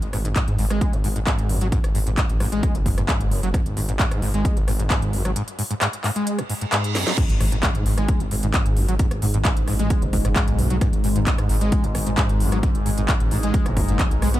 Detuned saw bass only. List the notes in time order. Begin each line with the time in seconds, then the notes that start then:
0.02 G#1
0.13 G#1
0.25 G#1
0.48 G#2
0.59 G#1
0.70 G#1
0.93 G#1
1.04 G#1
1.16 G#1
1.39 G#1
1.49 G#1
1.61 G#1
1.84 G#1
1.95 G#1
2.07 G#1
2.29 A1
2.40 A1
2.52 A1
2.75 F#1
2.86 F#1
2.98 F#1
3.20 F#1
3.31 F#1
3.43 F#1
3.66 G#1
3.77 G#1
3.88 G#1
4.11 G#2
4.22 G#1
4.34 G#1
4.57 G#1
4.68 G#1
4.79 G#1
5.02 G#1
5.13 G#1
5.25 G#1
7.29 G#1
7.40 G#1
7.52 G#1
7.75 G#2
7.86 G#1
7.98 G#1
8.20 G#1
8.31 G#1
8.43 G#1
8.66 G#1
8.77 G#1
8.88 G#1
9.11 G#1
9.22 G#1
9.34 G#1
9.57 A1
9.68 A1
9.79 A1
10.02 F#1
10.13 F#1
10.25 F#1
10.48 B1
10.59 B1
10.70 B1
10.93 G#1
11.04 G#1
11.16 G#1
11.39 G#2
11.50 G#1
11.61 G#1
11.84 G#1
11.95 G#1
12.07 G#1
12.29 G#1
12.40 G#1
12.52 G#1
12.75 G#1
12.86 G#1
12.98 G#1
13.20 A1
13.31 A1
13.43 A1
13.66 F#1
13.77 F#1
13.89 F#1
14.11 B1
14.22 B1
14.34 B1